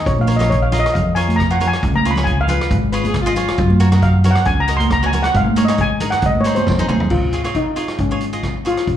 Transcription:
0.06 A#1 C#5, kick, closed hi-hat
0.18 F5, high conga
0.27 F4 A#4 C#5, closed hi-hat
0.36 F4 A#4 C#5 D#5, low conga
0.41 cross-stick, closed hi-hat
0.50 C#5, kick, closed hi-hat
0.62 F5
0.72 F4 A#4 D#5, closed hi-hat, low conga
0.79 D#5
0.86 cross-stick, closed hi-hat
0.94 F2 F5, kick, closed hi-hat
1.15 F4 A#4 C#5 G#5, closed hi-hat
1.28 closed hi-hat, high conga
1.36 A#5, kick, cross-stick, closed hi-hat
1.51 F4 A#4 C#5 F#5
1.60 F4 A#4 C#5, closed hi-hat, low conga
1.67 G#5
1.73 cross-stick, closed hi-hat
1.83 C#2, kick, closed hi-hat
1.94 A#5, high conga
2.05 F4 G#4 C#5, closed hi-hat
2.11 B5
2.16 F4 G#4 C#5, cross-stick, closed hi-hat, low conga
2.24 G#5, kick, closed hi-hat
2.41 F5
2.48 F4 G#4 B4, closed hi-hat, low conga
2.61 cross-stick, closed hi-hat
2.71 G#1, kick, closed hi-hat
2.92 F4 G#4 B4 C#5, closed hi-hat
3.04 G#4, closed hi-hat, high conga
3.14 kick, cross-stick, closed hi-hat
3.22 F4
3.26 F4 G#4 D#5
3.36 F4 G#4 C#5, closed hi-hat, low conga
3.48 cross-stick, closed hi-hat
3.58 F#2, kick, closed hi-hat
3.70 high conga
3.80 F#4 A#4 C#5, closed hi-hat
3.92 F#4 A#4 D#5, cross-stick, closed hi-hat, low conga
4.02 F5, kick, closed hi-hat
4.24 F#4 A#4 C#5, closed hi-hat, low conga
4.31 F#5
4.35 cross-stick, closed hi-hat
4.45 C#2 G#5, kick, closed hi-hat
4.60 A#5
4.68 F#4 A#4 D#5, closed hi-hat
4.77 C6, closed hi-hat, high conga
4.90 A#5, kick, cross-stick, closed hi-hat
5.03 F#4 A#4 C#5 G#5
5.13 F#4 A#4 C#5, closed hi-hat, low conga
5.23 F#5, cross-stick, closed hi-hat
5.34 G#2 F5, kick, closed hi-hat
5.46 high conga
5.56 D#4 G#4 C#5, closed hi-hat, high conga
5.65 D#4 D#5, cross-stick, closed hi-hat
5.69 G#4 C#5
5.78 G#5, kick, closed hi-hat
6.00 D#4 G#4 A#4, closed hi-hat, low conga
6.10 F#5, cross-stick, closed hi-hat
6.22 G#2, kick, closed hi-hat
6.26 D#5
6.35 high conga
6.41 C#5, closed hi-hat
6.45 D#4 G#4 C5
6.55 C5, closed hi-hat, high conga
6.66 F2, kick, snare
6.78 D#4 G#4 C5, high tom
6.88 D#2 D#4 G#4 C5, mid tom, high conga, low conga
7.00 floor tom
7.10 C#2 F4, kick, crash
7.32 F4 G#4 C#5, closed hi-hat
7.44 F4 G#4 C#5, cross-stick, closed hi-hat
7.55 D#4, kick, closed hi-hat
7.76 F4 G#4 C#5, closed hi-hat
7.88 cross-stick, closed hi-hat
7.98 G#1 C#4, kick, closed hi-hat
8.11 F4 G#4 C#5
8.21 closed hi-hat
8.33 F4 G#4 D#5, closed hi-hat
8.43 kick, cross-stick, closed hi-hat
8.65 F4 G#4 C#5, closed hi-hat
8.77 cross-stick, closed hi-hat
8.87 A#1, kick, closed hi-hat

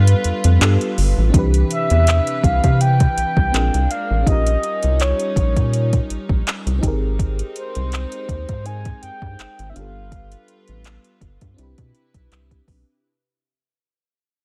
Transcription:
Already playing: G2 G3 B3 D4 F4 G4 A4 B4 F5
0.07 closed hi-hat
0.24 F2, closed hi-hat
0.44 F2, closed hi-hat
0.59 G2 B3 D4 F4 G4, clap, closed hi-hat
0.64 A4
0.81 closed hi-hat
0.98 G1, open hi-hat
1.18 A1
1.30 C4 D4
1.34 C2 C3 E3 G4 B4, kick, closed hi-hat
1.39 B4
1.54 closed hi-hat
1.71 E5, closed hi-hat
1.90 E2, closed hi-hat
2.07 clap, closed hi-hat
2.27 closed hi-hat
2.44 C2 F5, kick, closed hi-hat
2.64 C3, kick, closed hi-hat
2.81 G5, closed hi-hat
3.00 kick, closed hi-hat
3.17 C2, closed hi-hat
3.37 C2, kick
3.52 A#1 G#3 A#3 C4 D4 F4 G#4, clap, closed hi-hat
3.56 A#4
3.74 C2, closed hi-hat
3.91 F5, closed hi-hat
4.11 A1
4.23 G3 C#4 D#4
4.27 A#1 F4 G4 D#5, kick, closed hi-hat
4.31 A#4
4.47 closed hi-hat
4.63 closed hi-hat
4.83 C2, closed hi-hat
5.00 C#5, clap, closed hi-hat
5.20 closed hi-hat
5.36 A#1, kick, closed hi-hat
5.57 A#2, kick, closed hi-hat
5.73 closed hi-hat
5.93 kick, closed hi-hat
6.10 A#1, closed hi-hat
6.29 A#1, kick
6.47 clap, closed hi-hat
6.66 C2, closed hi-hat
6.78 C4 D#4
6.83 G#1 G#3 C4 D#4 G4 G#4, kick, closed hi-hat
6.87 A#4
7.19 kick, closed hi-hat
7.39 closed hi-hat
7.56 C5, closed hi-hat
7.75 C2, closed hi-hat
7.92 clap, closed hi-hat
8.12 closed hi-hat
8.29 D#2, kick, closed hi-hat
8.49 G#2, kick, closed hi-hat
8.64 C4 D#4 G#4 G#5, closed hi-hat
8.68 C5
8.85 kick, closed hi-hat
9.02 G2 G5, closed hi-hat
9.22 G2, kick
9.39 G#1, clap, closed hi-hat
9.59 G#1, closed hi-hat
9.70 B3 E5
9.74 G1 G3 D4 F4 B4 F5, closed hi-hat
9.78 G4 A4
10.12 kick, closed hi-hat
10.32 closed hi-hat
10.48 closed hi-hat
10.68 A1, closed hi-hat
10.84 clap, closed hi-hat
11.04 closed hi-hat
11.21 G1, kick, closed hi-hat
11.41 G2, kick, closed hi-hat
11.54 C4 D4
11.58 C2 C3 E4 G4 B4, closed hi-hat
11.63 B4
11.78 B2, kick, closed hi-hat
11.95 closed hi-hat
12.14 B1, kick, closed hi-hat
12.32 C2, clap, closed hi-hat
12.51 kick, closed hi-hat
12.68 B1, kick, open hi-hat

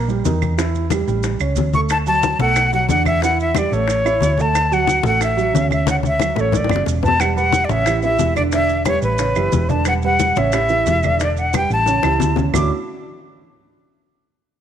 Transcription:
Already playing: A#1
0.08 G3 G4, high bongo, high conga, maracas
0.25 E2 D#3 D#4, high bongo, low bongo, high conga, maracas
0.42 high bongo, high conga, claves, maracas
0.58 E3 E4, high bongo, high conga, maracas
0.74 high conga, maracas
0.90 G3 G4, high bongo, high conga, claves, maracas
1.07 A1 G3 G4, high bongo, high conga, maracas
1.23 high bongo, high conga, maracas
1.40 C#2 C#4 C#5, high bongo, high conga, claves, maracas
1.56 D2, high bongo, low bongo, high conga, maracas
1.73 A3 A4 C#6, high bongo, high conga, maracas
1.89 A5, high bongo, high conga, claves, maracas
2.06 F#3 F#4 A5, high conga, maracas
2.23 high bongo, high conga, maracas
2.39 B1 A3 A4 F#5, high bongo, high conga, maracas
2.56 high bongo, high conga, claves, maracas
2.72 F#3 F#4 F#5, high bongo, high conga, maracas
2.89 E2 D3 D4 F#5, high bongo, low bongo, high conga, maracas
3.05 E5, high bongo, high conga, claves, maracas
3.22 E3 E4 F#5, high bongo, high conga, maracas
3.38 E5, high conga, maracas
3.55 G3 G4 D5, high bongo, high conga, claves, maracas
3.71 A1 A3 A4 C#5, high bongo, high conga, maracas
3.88 high bongo, high conga, maracas
4.05 E4 E5, high bongo, high conga, claves, maracas
4.21 D2, high bongo, low bongo, high conga, maracas
4.38 A3 A4 A5, high bongo, high conga, maracas
4.54 high bongo, high conga, claves, maracas
4.71 F#3 F#4 F#5, high conga, maracas
4.87 high bongo, high conga, maracas
5.03 A1 A3 A4 F#5, high bongo, high conga, maracas
5.21 E5, high bongo, high conga, claves, maracas
5.37 F#3 F#4, high bongo, high conga, maracas
5.53 D2 C#3 C#4, high bongo, low bongo, high conga, maracas
5.71 E5, high bongo, high conga, claves, maracas
5.86 C#3 C#4, high bongo, high conga, maracas
5.90 F#5
6.03 E5, high conga, maracas
6.19 F#3 F#4, high bongo, high conga, claves, maracas
6.35 A1 A3 A4, high bongo, low conga, maracas
6.40 C#5
6.52 high bongo, low conga, maracas
6.57 D5
6.64 high bongo
6.69 F#1 C#3 D5, low conga, claves, maracas
6.76 low bongo
6.86 E1, low bongo, maracas
7.02 B3 B4 A5, low conga, maracas
7.08 low bongo
7.19 G3 G4 B4 F#5, high bongo, high conga, claves, maracas
7.36 G3 G4 B4 F#5, high conga, maracas
7.52 high bongo, high conga, maracas
7.65 D5
7.69 A1 C#3 C#4 C#5 E5, high bongo, high conga, maracas
7.86 E3 E4 G4, high bongo, high conga, claves, maracas
8.02 E3 E4 G4 E5, high bongo, high conga, maracas
8.19 E1, high bongo, low bongo, high conga, maracas
8.36 D3 D4 D5, high bongo, high conga, claves, maracas
8.52 D3 D4 D5 E5, high bongo, high conga, maracas
8.69 high conga, maracas
8.85 G3 G4 B4 C#5, high bongo, high conga, claves, maracas
9.02 A1 B4, high bongo, high conga, maracas
9.18 C#3 C#4 C#5, high bongo, high conga, maracas
9.35 F#1 E3 E4 G4, high bongo, high conga, claves, maracas
9.52 E1, high bongo, low bongo, high conga, maracas
9.69 D3 D4 D5 A5, high bongo, high conga, maracas
9.85 G3 G4 B4 F#5, high bongo, high conga, claves, maracas
10.02 G3 G4 B4 F#5, high conga, maracas
10.19 high bongo, high conga, maracas
10.36 A1 C#3 C#4 C#5 E5, high bongo, high conga, maracas
10.52 E3 E4 G4, high bongo, high conga, claves, maracas
10.69 E3 E4 G4, high bongo, high conga, maracas
10.86 E1, high bongo, low bongo, high conga, maracas
11.03 D3 D4 D5, high bongo, high conga, claves, maracas
11.19 D3 D4 D5, high bongo, maracas
11.37 F#5, high conga, maracas
11.53 G3 G4 B4 G5, high bongo, high conga, claves, maracas
11.70 A1 A5, high bongo, high conga, maracas
11.86 C#3 C#4 C#5, high bongo, high conga, maracas
12.03 C#2 E3 E4 G4, high bongo, high conga, claves, maracas
12.20 D2, low bongo, high conga, maracas
12.36 C#3 C#4 C#5, low bongo, high conga, maracas
12.53 D2 D3 A3 C#4 D4 E4 F#4 D6, low bongo, low conga, claves, maracas

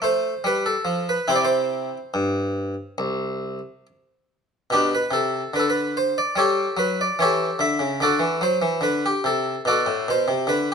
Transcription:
0.02 A3 C5
0.44 G3 B4
0.66 A4
0.85 F3
1.09 B4
1.28 C3 C4 E4 C5
1.36 D5
1.45 C5
2.14 G2
2.98 C2
4.70 B2 B3 D4 G4
4.95 B4
5.11 C3 A4
5.54 D3 B4
5.59 A4
5.70 B4
5.97 C5
6.18 D5
6.36 G3 G4 A4 C#5
6.77 F#3 B4
7.01 D5
7.19 E3 G4 A4 C#5
7.59 D3 E5
7.79 C#3
8.00 D3 F#4 A4 D5
8.20 E3
8.41 F#3 C5
8.62 E3
8.81 D3 B4
9.06 G4
9.24 C3 A4
9.65 B2 F#4 A4 D5
9.86 A2
10.08 B2 C5
10.28 C3
10.47 D3 B4

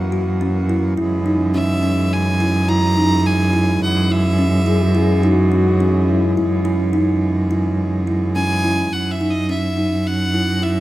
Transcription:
Already playing: F#2 E3 A#3 F#4
0.12 F#4
0.41 C#4
0.69 E4
0.97 F#2 C#3 E3 G#3 E4
1.26 D#4
1.54 C#4 E5
1.83 C#4
2.13 G#5
2.40 E4
2.69 E4 A#5
2.97 D#4
3.26 G#5
3.53 E4
3.83 F#5
4.10 E4 E5
4.39 C#4
4.66 E4 G#4
4.82 F#4
4.95 E4 G#4
5.23 D#4 F#4
5.52 C#4
5.80 C#4
6.09 E4
6.37 E4
6.65 E4
6.93 D#4
7.51 E4
8.07 E4
8.36 C#4 G#5
8.65 E4
8.92 F#2 F#5
9.11 E5
9.21 D#4
9.30 D#5
9.49 C#4 E5
9.77 D#4
10.07 F#5
10.34 E4
10.62 E4 E5

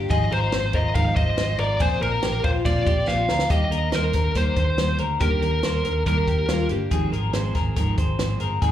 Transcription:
Already playing: G4
0.09 G#1 G#2 D#3 F3 G#3 C4 F4 G#4 D#5, kick, ride
0.30 G#1 F3 G#3 C4 F4 A#4 C5, ride
0.51 G#1 F3 G#3 C4 F4 C5, snare, ride
0.73 G#1 F3 G#3 C4 F4 A#4 D#5, kick, ride
0.94 G#1 G#2 D#3 F3 G#3 C4 F4 A#4 F5, kick, ride
1.16 G#1 F3 G#3 C4 F4 C5 D#5, kick, ride
1.37 G#1 F3 G#3 C4 F4, snare, ride
1.58 G#1 F3 G#3 C4 F4 A#4 D5, ride
1.79 A#1 A#2 D3 F3 A#3 C4 F4 G#4 C5, kick, ride
2.01 A#1 F3 A#3 C4 F4 A#4, ride
2.21 A#1 F3 A#3 C4 F4 G4, snare, ride
2.43 A#1 F3 A#3 C4 F4 C5, kick, ride
2.65 A#1 A#2 D3 F3 A#3 C4 F4 D5, kick, ride
2.86 A#1 F3 A#3 C4 F4 G4, kick, ride
3.07 A#1 F3 A#3 C4 F4 F5, snare
3.28 D2 F3 A#3 C4 F4 A#4, snare
3.39 snare
3.50 D#2 D#3 G3 A#3 D4 G4 D#5, kick, closed hi-hat
3.71 D#2 A#3 D4 G4 A#4, closed hi-hat
3.92 D#2 G3 A#3 D4 G4 A#4 C5, snare, closed hi-hat
4.13 D#2 A#3 D4 G4 A#4, kick, snare, closed hi-hat
4.34 D#2 D#3 G3 A#3 D4 G4 A#4 C5, kick, closed hi-hat
4.55 D#2 A#3 D4 G4 C5, kick, closed hi-hat
4.77 D#2 G3 A#3 D4 G4, snare, closed hi-hat
4.98 D2 A#3 D4 G4 A#4, closed hi-hat
5.20 D#2 D#3 G3 A#3 D4 G4 A#4, kick, closed hi-hat
5.42 D#2 A#3 D4 G4 A#4, closed hi-hat
5.62 D#2 G3 A#3 D4 G4 C5, snare, closed hi-hat
5.84 D#2 A#3 D4 G4 A#4, closed hi-hat
6.06 D#2 D#3 G3 A#3 D4 G4 A#4, kick, closed hi-hat
6.26 D#2 A#3 D4 G4, kick, closed hi-hat
6.48 D#2 G3 A#3 D4 F4 G4, snare, closed hi-hat
6.69 G1 A#3 D4 G4, closed hi-hat
6.91 G#1 G#2 D#3 F3 G#3 C4 G#4, kick, closed hi-hat
7.12 G#1 F3 G#3 C4 G#4 A#4, closed hi-hat
7.33 G#1 F3 G#3 C4 G#4 C5, snare, closed hi-hat
7.55 G#1 F3 G#3 C4 G#4 A#4, kick, snare, closed hi-hat
7.76 G#1 G#2 D#3 F3 G#3 C4 G#4 A#4, kick, closed hi-hat
7.98 G#1 F3 G#3 C4 G#4 C5, kick, closed hi-hat
8.18 G#1 F3 G#3 C4 G#4, snare, closed hi-hat
8.40 G1 F3 G#3 C4 G#4 A#4, closed hi-hat
8.62 G#1 G#2 D#3 F3 G#3 C4 G#4, kick, closed hi-hat

